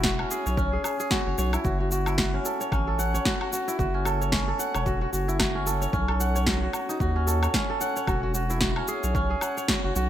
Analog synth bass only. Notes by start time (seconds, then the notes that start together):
Already playing: E1
0.46 B1
1.27 F#1
1.38 B1
1.65 F#1
2.72 A1
3.79 F#1
4.75 E1
5.13 F#1
5.93 B1
7.01 D#2
8.08 E1
9.04 B1
9.84 F#1
9.96 B1